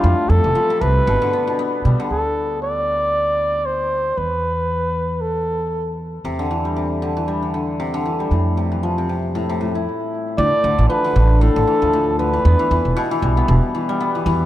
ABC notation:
X:1
M:4/4
L:1/16
Q:"Swing 16ths" 1/4=116
K:Ddor
V:1 name="Flugelhorn"
F2 A4 B8 z2 | A4 d8 c4 | B8 A6 z2 | z16 |
z16 | d4 B4 A6 B2- | B6 z8 z2 |]
V:2 name="Hammered dulcimer" clef=bass
A,,2 C, E, F, C, C,2 B,, D, B, B,, B, z G, D, | z16 | z16 | C, D, E, G, C,2 D, E, G, D, D,2 C, D, E, G, |
A,,2 C, E, F, C, C,2 A,, C, A,, E z4 | A,,2 D, E, F, D, D,2 A,, D, E, F, A,,2 D, E, | B, E, E,2 B,, E, G, B, B,,2 E, G, B, E, E,2 |]
V:3 name="Upright bass" clef=bass
F,, z F,, F,,, z2 C,, z G,,, z4 z B,, z | D,,16 | E,,16 | E,,16 |
F,,12 z4 | D,, z D,, A,,, z2 A,,,2 z A,,, z D,,4 z | E,, z E,, E,,, z2 B,,, z E,,, z4 z E,, z |]